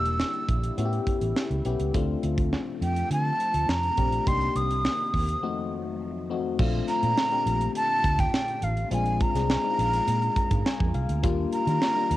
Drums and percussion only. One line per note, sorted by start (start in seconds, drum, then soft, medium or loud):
0.05 closed hi-hat medium
0.20 snare loud
0.33 closed hi-hat soft
0.49 kick medium
0.49 closed hi-hat medium
0.63 closed hi-hat medium
0.78 closed hi-hat medium
0.93 closed hi-hat soft
1.07 kick medium
1.07 closed hi-hat medium
1.21 closed hi-hat medium
1.36 snare loud
1.51 closed hi-hat soft
1.65 closed hi-hat medium
1.80 closed hi-hat medium
1.94 kick loud
1.94 closed hi-hat medium
2.23 closed hi-hat medium
2.38 kick medium
2.38 closed hi-hat medium
2.53 snare loud
2.82 closed hi-hat medium
2.96 closed hi-hat medium
3.11 closed hi-hat medium
3.40 closed hi-hat medium
3.54 closed hi-hat medium
3.69 snare loud
3.83 closed hi-hat soft
3.97 kick medium
3.97 closed hi-hat medium
4.12 closed hi-hat medium
4.27 kick loud
4.27 closed hi-hat medium
4.41 closed hi-hat soft
4.56 closed hi-hat medium
4.71 closed hi-hat medium
4.85 snare loud
5.14 kick medium
5.14 open hi-hat medium
5.29 closed hi-hat medium
6.59 kick loud
6.59 crash loud
6.88 snare soft
6.88 closed hi-hat medium
7.03 closed hi-hat medium
7.18 snare loud
7.31 closed hi-hat soft
7.47 closed hi-hat medium
7.61 closed hi-hat medium
7.75 closed hi-hat medium
8.04 kick medium
8.04 closed hi-hat medium
8.19 kick loud
8.19 closed hi-hat medium
8.34 snare loud
8.48 closed hi-hat soft
8.62 closed hi-hat medium
8.77 closed hi-hat medium
8.91 closed hi-hat loud
9.06 closed hi-hat soft
9.20 kick medium
9.20 closed hi-hat medium
9.36 snare soft
9.36 closed hi-hat medium
9.50 snare loud
9.79 closed hi-hat medium
9.94 closed hi-hat medium
10.08 closed hi-hat medium
10.22 closed hi-hat soft
10.36 kick medium
10.36 closed hi-hat medium
10.51 kick medium
10.51 closed hi-hat medium
10.66 snare loud
10.80 kick medium
10.94 closed hi-hat medium
11.09 closed hi-hat medium
11.23 kick loud
11.23 closed hi-hat loud
11.53 closed hi-hat medium
11.67 closed hi-hat medium
11.82 snare loud
12.11 closed hi-hat medium